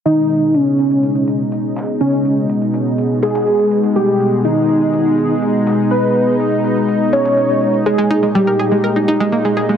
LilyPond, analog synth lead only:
\new Staff \with { instrumentName = "Analog synth lead" } { \time 4/4 \key gis \minor \tempo 4 = 123 dis'4 cis'2 r4 | cis'4 r4. gis'4. | g'4 dis'2 r4 | b'4 r4. cis''4. |
gis'4 g'2 r4 | }